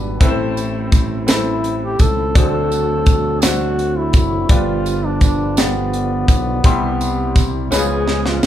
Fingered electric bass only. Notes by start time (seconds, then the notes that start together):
Already playing: G#1
0.21 A1
2.00 C#2
2.36 D2
4.14 F#1
4.49 G1
6.28 B1
6.64 C2
7.72 C#2